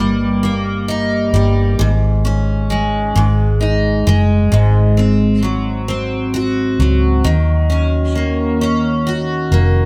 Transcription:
Already playing: G1 G2 G3 A#3 D#4
0.43 A#3
0.88 D#4
1.33 G1 G3
1.79 G#1 G#2
2.25 C#4
2.70 G#3
3.16 G#1 G#2
3.61 D#4
4.07 F#1 G#3
4.52 G#1 G#2
4.97 C4
5.43 F#3
5.88 C4
6.34 F#4
6.79 C#2 F#3
7.24 D#2 D#3
7.70 C#4
8.15 A#3
8.61 C#4
9.07 F#4
9.51 F1 A#3

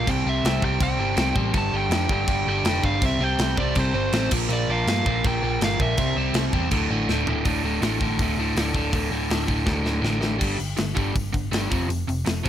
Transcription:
0.07 C2 C3 G3 C4 G5, kick, crash
0.26 C2 C3 G3 C4 E5
0.43 C2 C3 G3 C4, snare, crash
0.62 C2 C3 G3 C4 G5, kick
0.80 C2 C3 G3 C4 G5, kick, crash
0.99 G1 C3 G3 C4
1.17 C2 C3 G3 C4, snare, crash
1.35 A1 C3 G3 C4, kick
1.54 G1 G2 D3 G3, kick, crash
1.58 A5
1.72 G1 G2 D3 G3 G5
1.90 F2 G2 D3 G3, snare, crash
2.09 G1 G2 D3 G3 G5, kick
2.27 G1 G2 D3 G3, kick, crash
2.47 G1 G2 D3 G3 G5
2.64 F1 G2 D3 G3, snare, crash
2.84 G1 G2 D3 G3 F5, kick
3.02 C2 C3 G3 C4 E5, kick, crash
3.19 C2 C3 G3 C4
3.23 G5
3.39 C2 C3 G3 C4, snare, crash
3.57 C2 C3 G3 C4 D5, kick
3.75 C2 C3 G3 C4, kick, crash
3.80 C5
3.94 G1 C3 G3 C4
4.12 A1 C3 G3 C4, snare, crash
4.31 A#1 A#2 F3 A#3, kick, crash
4.49 A#1 A#2 F3 A#3, crash
4.53 D5
4.68 A#1 A#2 F3 A#3 F5
4.87 G2 A#2 A#3, snare, crash
5.06 A#1 A#2 F3 A#3, kick
5.24 A#1 A#2 F3 A#3 G5, kick, crash
5.42 A#1 A#2 F3 A#3
5.60 G1 A#2 F3 A#3, snare, crash
5.64 F5
5.80 A#1 A#2 F3 A#3 E5, kick
5.97 C2 C3 G3 C4, kick, crash
6.16 C2 C3 G3 C4
6.33 C2 C3 G3 C4, snare, crash
6.53 E2 C3 G3 C4, kick
6.71 D1 D2 A2 D3, kick, crash
6.90 A1 D2 A2 D3
7.08 D1 D2 A2 D3, snare
7.26 D1 D2 A2 D3, floor tom
7.45 D1 D2 A2 D3, kick, open hi-hat
7.63 D1 D2 A2 D3
7.81 A1 D2 A2 D3, snare, open hi-hat
8.01 D2 A2 D3, kick
8.19 D1 D2 A2 D3, kick, open hi-hat
8.37 D1 D2 A2 D3
8.55 D1 D2 A2 D3, snare, open hi-hat
8.74 D1 D2 A2 D3, kick
8.92 D1 D2 A2 D3, kick, open hi-hat
9.11 D1 D2 A2 D3
9.30 D1 D2 A2 D3, snare, open hi-hat
9.47 D1 D2 A2 D3, kick
9.66 D1 D2 A2 D3, kick, snare
9.83 D1 D2 A2 D3, snare
10.01 A1 D2 A2 D3, snare
10.20 D2 A2 D3, snare
10.39 G1 G2 D3 G3, kick, crash
10.57 G1 G2 D3, open hi-hat
10.77 G1 G2 D3, snare, open hi-hat
10.95 G1 G2 D3 G3, kick, open hi-hat
11.14 G1 G2 D3, kick, open hi-hat
11.33 G1 G2 D3, kick, open hi-hat
11.51 G1 G2 D3 G3, snare, open hi-hat
11.71 F1 F2 C3 F3, kick, open hi-hat
11.88 F1 F2 C3, open hi-hat
12.08 F1 F2 C3, open hi-hat
12.26 F1 F2 C3, snare, open hi-hat
12.44 F1 F2 C3 F3, kick, open hi-hat

